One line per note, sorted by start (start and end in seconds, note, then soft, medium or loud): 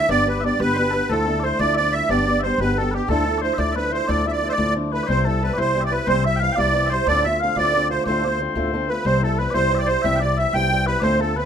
0.08 0.50 G1 loud
0.08 0.26 G3 medium
0.08 0.27 B3 medium
0.08 0.27 D4 loud
0.08 0.25 G4 medium
0.08 0.40 D5 loud
0.08 0.28 D5 loud
0.27 0.42 B3 soft
0.27 0.43 D4 medium
0.27 0.43 G4 medium
0.27 0.44 B4 medium
0.41 0.59 G3 soft
0.41 0.59 B3 medium
0.41 0.60 D4 medium
0.41 0.58 G4 medium
0.41 0.60 D5 medium
0.41 0.44 E5 medium
0.45 0.59 D5 medium
0.60 1.01 G1 loud
0.60 0.75 G3 medium
0.60 0.76 B3 medium
0.60 0.77 D4 medium
0.60 0.77 G4 medium
0.60 0.74 B4 medium
0.60 1.12 B4 loud
0.74 0.93 G3 medium
0.74 0.94 B3 medium
0.74 0.78 C5 medium
0.78 0.93 D4 medium
0.78 0.92 G4 medium
0.78 0.90 B4 medium
0.90 1.10 D4 soft
0.90 1.10 G4 medium
0.90 0.94 A4 medium
0.90 1.09 B4 medium
0.95 1.11 B3 soft
1.09 1.51 D2 loud
1.09 1.28 D2 medium
1.09 1.28 D3 medium
1.09 1.28 F3 medium
1.09 1.28 A3 medium
1.09 1.27 D4 medium
1.09 1.26 E4 medium
1.09 1.40 A4 medium
1.09 1.45 A4 medium
1.27 1.42 F3 soft
1.27 1.44 A3 soft
1.27 1.44 D4 medium
1.27 1.43 E4 medium
1.40 1.59 F3 medium
1.40 1.44 D5 medium
1.44 1.60 A3 medium
1.44 1.59 D4 medium
1.44 1.59 E4 medium
1.44 1.59 C5 medium
1.44 1.60 C5 medium
1.59 2.00 D2 loud
1.59 1.78 D2 medium
1.59 1.78 D3 medium
1.59 1.77 F3 medium
1.59 1.78 A3 medium
1.59 1.78 D4 medium
1.59 1.78 E4 medium
1.59 1.74 D5 medium
1.59 1.75 D5 loud
1.74 1.94 D5 loud
1.74 1.95 D5 medium
1.74 1.78 E5 medium
1.79 1.94 F3 medium
1.79 1.94 A3 medium
1.79 1.94 D4 medium
1.92 2.09 F3 soft
1.92 2.10 A3 medium
1.92 2.10 D4 soft
1.92 2.10 E4 medium
1.92 2.09 E5 loud
1.92 2.10 E5 medium
2.09 2.50 G1 loud
2.09 2.27 G3 medium
2.09 2.27 B3 medium
2.09 2.27 D4 medium
2.09 2.25 G4 loud
2.09 2.41 D5 loud
2.09 2.40 D5 medium
2.27 2.44 B3 soft
2.27 2.44 D4 medium
2.27 2.43 G4 medium
2.40 2.60 C5 medium
2.40 2.44 E5 medium
2.44 2.60 G3 medium
2.44 2.60 B3 medium
2.44 2.61 D4 medium
2.44 2.60 G4 medium
2.44 2.60 C5 medium
2.58 3.00 G1 medium
2.58 2.78 D4 medium
2.58 2.78 G4 medium
2.58 2.78 B4 medium
2.62 2.77 G3 medium
2.62 2.78 B3 medium
2.77 2.94 G3 medium
2.77 2.94 B3 medium
2.77 2.94 D4 medium
2.77 2.93 G4 medium
2.77 2.94 A4 medium
2.77 2.91 A4 medium
2.91 3.09 G4 medium
2.91 2.95 B4 medium
2.95 3.10 B3 soft
2.95 3.10 D4 soft
3.08 3.50 D2 loud
3.08 3.27 D2 medium
3.08 3.27 A2 medium
3.08 3.27 F3 medium
3.08 3.27 A3 medium
3.08 3.26 D4 loud
3.08 3.25 E4 loud
3.08 3.38 A4 medium
3.08 3.41 A4 loud
3.28 3.40 F3 soft
3.28 3.41 A3 soft
3.38 3.58 F3 medium
3.38 3.54 C5 medium
3.38 3.42 D5 medium
3.42 3.57 A3 medium
3.42 3.57 D4 medium
3.42 3.57 E4 medium
3.42 3.60 C5 medium
3.54 3.58 E5 medium
3.58 3.99 D2 loud
3.58 3.77 D2 medium
3.58 3.77 A2 medium
3.58 3.73 F3 medium
3.58 3.74 A3 medium
3.58 3.75 D4 medium
3.58 3.76 E4 medium
3.58 3.72 D5 medium
3.58 3.75 D5 medium
3.72 3.91 F3 medium
3.72 3.92 A3 medium
3.72 3.92 B4 medium
3.72 3.75 E5 medium
3.76 3.91 D4 medium
3.76 3.89 E4 medium
3.76 3.92 B4 medium
3.91 4.08 F3 soft
3.91 4.07 A3 soft
3.91 4.08 D4 medium
3.91 4.08 E4 medium
3.91 4.07 C5 medium
3.91 4.10 C5 loud
4.07 4.26 D2 medium
4.07 4.50 D2 loud
4.07 4.26 A2 medium
4.07 4.26 F3 medium
4.07 4.26 A3 medium
4.07 4.25 D4 medium
4.07 4.24 E4 loud
4.07 4.27 D5 medium
4.07 4.26 D5 loud
4.25 4.40 F3 soft
4.25 4.40 A3 medium
4.25 4.42 D4 soft
4.25 4.42 E4 medium
4.25 4.31 E5 medium
4.25 4.32 E5 medium
4.31 4.49 D5 medium
4.31 4.48 D5 medium
4.41 4.58 F3 medium
4.41 4.57 A3 medium
4.41 4.57 D4 medium
4.41 4.56 E4 medium
4.49 4.53 C5 medium
4.49 4.74 D5 loud
4.49 4.92 D5 medium
4.49 4.53 E5 medium
4.57 4.99 D2 loud
4.57 4.77 D2 medium
4.57 4.77 A2 medium
4.57 4.74 F3 medium
4.57 4.75 A3 medium
4.57 4.75 D4 medium
4.57 4.75 E4 medium
4.75 4.92 F3 medium
4.75 4.92 A3 medium
4.75 4.92 D4 medium
4.75 4.91 E4 medium
4.92 5.08 F3 soft
4.92 5.08 A3 medium
4.92 5.08 D4 medium
4.92 5.08 E4 soft
4.92 5.03 B4 medium
4.92 5.08 B4 medium
5.03 5.25 C5 medium
5.03 5.07 D5 medium
5.08 5.49 C2 loud
5.08 5.26 C3 medium
5.08 5.26 E3 medium
5.08 5.26 G3 medium
5.08 5.26 C4 medium
5.08 5.25 E4 loud
5.08 5.27 C5 medium
5.25 5.43 C4 soft
5.25 5.42 E4 medium
5.25 5.53 A4 medium
5.25 5.43 A4 medium
5.29 5.41 G3 medium
5.42 5.58 E3 medium
5.42 5.57 G3 medium
5.42 5.57 C4 medium
5.42 5.57 E4 medium
5.42 5.59 B4 medium
5.53 5.98 C2 medium
5.53 5.58 D5 medium
5.58 5.76 C3 medium
5.58 5.73 E3 medium
5.58 5.75 G3 medium
5.58 5.76 C4 medium
5.58 5.75 E4 medium
5.58 5.81 C5 medium
5.58 5.83 C5 loud
5.75 5.91 E3 medium
5.75 5.92 G3 medium
5.75 5.91 C4 medium
5.75 5.90 E4 medium
5.81 5.92 D5 medium
5.81 5.84 E5 medium
5.86 5.93 D5 medium
5.91 6.07 G3 soft
5.91 6.07 C4 soft
5.91 6.08 E4 medium
5.91 6.08 B4 medium
5.91 6.07 B4 medium
6.07 6.48 C2 loud
6.07 6.25 C3 loud
6.07 6.25 E3 medium
6.07 6.25 G3 medium
6.07 6.25 C4 medium
6.07 6.24 E4 medium
6.07 6.24 C5 medium
6.07 6.24 C5 loud
6.24 6.41 E4 medium
6.24 6.36 E5 medium
6.24 6.42 E5 medium
6.36 6.52 F5 loud
6.36 6.40 G5 loud
6.41 6.56 E3 medium
6.41 6.56 G3 medium
6.41 6.56 C4 medium
6.41 6.56 E4 medium
6.41 6.58 F5 loud
6.52 6.86 D5 medium
6.52 6.56 G5 medium
6.57 6.98 C2 medium
6.57 6.75 C3 medium
6.57 6.72 E3 medium
6.57 6.73 G3 medium
6.57 6.74 C4 medium
6.57 6.74 E4 medium
6.57 6.92 D5 loud
6.73 6.90 E3 medium
6.73 6.91 G3 medium
6.73 6.91 C4 medium
6.73 6.90 E4 medium
6.86 7.07 C5 medium
6.86 6.90 E5 medium
6.91 7.08 G3 medium
6.91 7.07 C4 medium
6.91 7.07 E4 medium
6.91 7.08 C5 loud
7.07 7.47 D2 loud
7.07 7.24 D2 medium
7.07 7.25 A2 medium
7.07 7.25 D3 medium
7.07 7.25 A3 loud
7.07 7.25 C4 medium
7.07 7.25 F4 medium
7.07 7.25 D5 loud
7.24 7.41 D3 soft
7.24 7.42 A3 soft
7.24 7.41 C4 medium
7.24 7.41 F4 medium
7.24 7.41 E5 medium
7.24 7.40 E5 medium
7.40 7.57 D3 medium
7.40 7.57 A3 medium
7.40 7.57 C4 medium
7.40 7.57 F5 medium
7.45 7.56 F4 medium
7.56 7.97 D2 medium
7.56 7.75 D2 medium
7.56 7.75 A2 medium
7.56 7.74 D3 medium
7.56 7.75 A3 medium
7.56 7.75 C4 medium
7.56 7.74 F4 medium
7.56 7.92 D5 medium
7.56 7.88 D5 loud
7.75 7.90 D3 medium
7.75 7.91 A3 medium
7.75 7.90 C4 medium
7.75 7.89 F4 medium
7.90 8.07 D3 soft
7.90 8.07 A3 soft
7.90 8.06 C4 medium
7.90 8.06 F4 medium
7.90 8.04 C5 medium
8.04 8.46 D2 loud
8.04 8.24 D2 medium
8.04 8.24 A2 medium
8.04 8.40 C5 medium
8.04 8.24 C5 medium
8.04 8.08 D5 medium
8.08 8.25 D3 medium
8.08 8.24 A3 loud
8.08 8.23 C4 medium
8.08 8.22 F4 loud
8.23 8.38 D3 soft
8.23 8.39 A3 medium
8.23 8.40 C4 medium
8.23 8.39 F4 soft
8.23 8.29 D5 medium
8.29 8.91 C5 medium
8.39 8.55 D3 medium
8.39 8.56 A3 medium
8.39 8.55 C4 medium
8.39 8.55 F4 medium
8.55 8.96 D2 medium
8.55 8.74 D2 medium
8.55 8.74 A2 medium
8.55 8.72 D3 medium
8.55 8.73 A3 medium
8.55 8.73 C4 medium
8.55 8.73 F4 medium
8.73 8.89 D3 medium
8.73 8.89 A3 medium
8.73 8.89 C4 medium
8.73 8.89 F4 medium
8.88 9.05 D3 soft
8.88 9.05 A3 soft
8.88 9.05 C4 soft
8.88 9.05 F4 soft
8.88 9.05 B4 medium
8.88 9.06 B4 medium
9.05 9.46 C2 loud
9.05 9.22 C3 medium
9.05 9.22 E3 medium
9.05 9.23 G3 medium
9.05 9.23 C4 medium
9.05 9.21 E4 medium
9.05 9.22 C5 medium
9.05 9.24 C5 medium
9.23 9.39 G3 soft
9.23 9.39 C4 soft
9.23 9.39 E4 medium
9.23 9.38 A4 medium
9.38 9.54 E3 medium
9.38 9.54 G3 medium
9.38 9.53 C4 medium
9.38 9.53 B4 medium
9.38 9.50 B4 medium
9.42 9.53 E4 medium
9.50 9.95 C2 medium
9.50 9.71 C4 medium
9.50 9.72 E4 medium
9.50 9.80 C5 loud
9.50 9.75 C5 medium
9.50 9.54 D5 medium
9.55 9.72 C3 medium
9.55 9.69 E3 medium
9.55 9.70 G3 medium
9.70 9.87 E3 medium
9.70 9.88 G3 medium
9.70 9.87 C4 medium
9.70 9.85 E4 medium
9.75 9.86 D5 medium
9.75 9.79 E5 medium
9.79 9.88 D5 medium
9.86 10.03 G3 soft
9.86 10.04 C4 soft
9.86 10.03 E4 medium
9.86 10.02 C5 medium
9.86 10.04 C5 loud
10.02 10.45 C2 loud
10.02 10.21 C3 medium
10.02 10.21 E3 medium
10.02 10.22 G3 medium
10.02 10.22 C4 loud
10.02 10.21 E4 loud
10.02 10.16 E5 loud
10.02 10.22 E5 loud
10.16 10.37 D5 medium
10.16 10.20 G5 medium
10.22 10.38 G3 soft
10.22 10.38 C4 medium
10.22 10.38 E4 medium
10.22 10.38 D5 medium
10.37 10.54 E3 medium
10.37 10.54 G3 medium
10.37 10.54 C4 medium
10.37 10.54 E4 medium
10.37 10.54 E5 medium
10.37 10.55 E5 medium
10.53 10.94 C2 loud
10.53 10.72 C3 medium
10.53 10.69 E3 medium
10.53 10.71 G3 medium
10.53 10.72 C4 medium
10.53 10.72 E4 medium
10.53 10.87 G5 loud
10.53 10.85 G5 loud
10.71 10.87 E3 medium
10.71 10.87 G3 medium
10.71 10.87 C4 medium
10.71 10.85 E4 medium
10.87 11.03 G3 soft
10.87 11.02 C4 soft
10.87 11.03 E4 medium
10.87 11.00 B4 medium
10.87 11.02 B4 loud
11.00 11.43 D2 loud
11.00 11.20 D2 medium
11.00 11.20 A2 medium
11.00 11.20 D3 loud
11.00 11.20 A3 loud
11.00 11.20 C4 medium
11.00 11.18 F4 medium
11.00 11.21 C5 loud
11.00 11.20 C5 medium
11.00 11.04 D5 medium
11.19 11.34 D3 medium
11.19 11.35 A3 medium
11.19 11.37 C4 medium
11.19 11.36 F4 medium
11.19 11.36 A4 medium
11.19 11.37 A4 medium
11.35 11.45 D3 medium
11.35 11.45 A3 medium
11.35 11.45 C4 medium
11.35 11.45 F4 medium
11.35 11.45 B4 medium